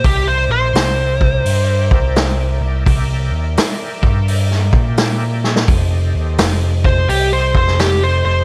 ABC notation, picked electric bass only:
X:1
M:4/4
L:1/8
Q:"Swing" 1/4=85
K:Cmix
V:1 name="Picked electric bass" clef=bass
C,, B,,, C,,2 G,, C,,2 C,, | C,, _E,, z G,,2 B,,3 | F,,, _E,, F,,,2 C,, F,,,2 F,,, |]